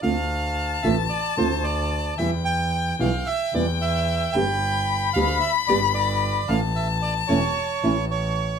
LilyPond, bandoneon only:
\new Staff \with { instrumentName = "Bandoneon" } { \time 4/4 \key d \minor \tempo 4 = 112 f''4. e''8 d''8 c''8 d''4 | e''8 g''4 f''8 e''8 d''8 e''4 | g''4. f''8 e''8 d''8 d''4 | f''8 e''8 d''8 cis''4. cis''4 | }